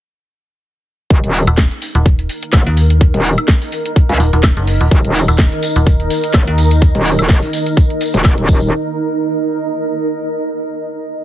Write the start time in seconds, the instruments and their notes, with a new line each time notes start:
1.10 wobble bass D#1, ambient pad D#4, kick, closed hi-hat
1.24 wobble bass D#1, closed hi-hat
1.34 closed hi-hat, open hi-hat
1.44 fm bass D#1, ambient pad A#4, closed hi-hat, high woodblock
1.57 kick, snare, closed hi-hat
1.71 snare, closed hi-hat
1.82 closed hi-hat, open hi-hat
1.95 fm bass D#1, closed hi-hat
2.06 kick, closed hi-hat
2.19 closed hi-hat
2.29 closed hi-hat, open hi-hat
2.43 closed hi-hat
2.53 wobble bass F#1, kick, snare, closed hi-hat, high woodblock
2.66 fm bass D#2, snare, closed hi-hat
2.77 closed hi-hat, open hi-hat
2.90 ambient pad D#5, closed hi-hat
3.01 kick, closed hi-hat
3.14 wobble bass D#1, snare, closed hi-hat
3.25 closed hi-hat, open hi-hat
3.38 closed hi-hat, high woodblock
3.48 kick, snare, closed hi-hat
3.62 snare, open hi-hat
3.72 closed hi-hat, open hi-hat
3.85 closed hi-hat
3.96 kick, closed hi-hat
4.09 wobble bass C#2, closed hi-hat
4.20 fm bass D#1, closed hi-hat, open hi-hat
4.33 fm bass D#1, snare, closed hi-hat
4.43 kick, snare, closed hi-hat, high woodblock
4.57 fm bass F#1, closed hi-hat
4.67 open hi-hat
4.81 fm bass D#1, closed hi-hat
4.91 wobble bass D#1, analog synth pad D#3 D#4 A#4, kick, closed hi-hat, tambourine
5.04 wobble bass D#1, closed hi-hat
5.14 closed hi-hat, open hi-hat, tambourine
5.28 fm bass D#1, closed hi-hat, tambourine, high woodblock
5.38 kick, snare, closed hi-hat, tambourine
5.52 snare, closed hi-hat
5.62 closed hi-hat, open hi-hat, tambourine
5.76 fm bass D#1, closed hi-hat, tambourine
5.87 kick, closed hi-hat, tambourine
6.00 closed hi-hat
6.10 closed hi-hat, open hi-hat, tambourine
6.23 closed hi-hat, tambourine
6.34 wobble bass F#1, kick, snare, closed hi-hat, tambourine, high woodblock
6.47 fm bass D#2, snare, closed hi-hat
6.58 closed hi-hat, open hi-hat, tambourine
6.70 closed hi-hat, tambourine
6.82 kick, closed hi-hat, tambourine
6.95 wobble bass D#1, snare, closed hi-hat
7.05 closed hi-hat, open hi-hat, tambourine
7.19 wobble bass D#1, closed hi-hat, tambourine, high woodblock
7.29 kick, snare, closed hi-hat, tambourine
7.43 snare, open hi-hat
7.53 closed hi-hat, open hi-hat, tambourine
7.66 closed hi-hat, tambourine
7.77 kick, closed hi-hat, tambourine
7.90 closed hi-hat
8.01 closed hi-hat, open hi-hat, tambourine
8.14 wobble bass D#1, snare, closed hi-hat, tambourine
8.24 kick, snare, closed hi-hat, tambourine, high woodblock
8.38 wobble bass D#1, closed hi-hat
8.48 wobble bass D#1, analog synth pad D#3 D#4 A#4, ambient pad D#4, kick, tambourine
8.56 ambient pad A#4, tambourine
8.88 ambient pad D#5